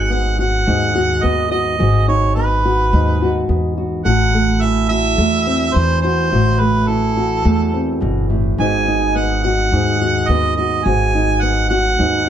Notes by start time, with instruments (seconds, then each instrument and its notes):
Already playing: upright bass G#1, nylon-string guitar G#2 D#4 F#4, harmonica F#5
0.10 nylon-string guitar B3, harmonica F#5
0.39 nylon-string guitar F#4, harmonica F#5
0.66 upright bass D#2, nylon-string guitar G#2 D#4
0.95 nylon-string guitar F#4
1.23 upright bass D#2, nylon-string guitar B3, harmonica D#5
1.51 nylon-string guitar F#4, harmonica D#5
1.79 upright bass G#1, nylon-string guitar G#2 F#4
2.08 nylon-string guitar D#4, harmonica C#5
2.35 nylon-string guitar B3, harmonica B4
2.65 nylon-string guitar F#4
2.93 upright bass D#2, nylon-string guitar G#2 D#4
3.22 nylon-string guitar F#4
3.49 upright bass E2, nylon-string guitar B3
3.77 nylon-string guitar F#4
4.05 upright bass A1, nylon-string guitar A2 F#4, harmonica F#5
4.34 nylon-string guitar A3
4.61 nylon-string guitar E3, harmonica E5
4.89 nylon-string guitar F#4, harmonica E5
5.18 upright bass E2, nylon-string guitar E2 A3
5.47 nylon-string guitar C4
5.73 upright bass E2, nylon-string guitar E3, harmonica C5
6.02 nylon-string guitar F#4, harmonica C5
6.32 upright bass A1, nylon-string guitar A2 F#4
6.60 nylon-string guitar A3, harmonica B4
6.88 nylon-string guitar E3, harmonica A4
7.17 nylon-string guitar F#4
7.44 nylon-string guitar E2 A3, upright bass E2
7.74 nylon-string guitar C4
8.01 upright bass G1, nylon-string guitar B2
8.30 nylon-string guitar A2
8.58 upright bass G#1, nylon-string guitar G#2 B3 D#4 F#4, harmonica G#5
8.88 nylon-string guitar D#4
9.15 nylon-string guitar B3, harmonica F#5
9.43 nylon-string guitar F#4, harmonica F#5
9.72 upright bass D#2, nylon-string guitar G#2 D#4
10.01 nylon-string guitar F#4
10.28 upright bass D#2, nylon-string guitar B3, harmonica D#5
10.56 nylon-string guitar F#4, harmonica D#5
10.85 upright bass G#1, nylon-string guitar G#2 F#4, harmonica G#5
11.15 nylon-string guitar D#4
11.41 nylon-string guitar B3, harmonica F#5
11.70 nylon-string guitar F#4, harmonica F#5
11.98 upright bass D#2, nylon-string guitar G#2 D#4